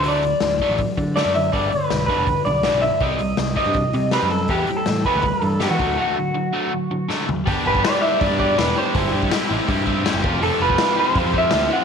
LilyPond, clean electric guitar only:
\new Staff \with { instrumentName = "Clean electric guitar" } { \time 4/4 \key g \major \tempo 4 = 162 d''2 r4 d''8 e''8 | d''8 b'4 b'4 d''4 e''8 | ees''4. ees''4. b'8 a'8 | g'8. a'8. b'8 b'16 a'8. g'16 fis'8. |
fis'2. r4 | r8 b'8 d''8 e''8 d''8 d''8 b'8 c''8~ | c''8 r2. r8 | a'8 b'4 c''4 e''4 fis''8 | }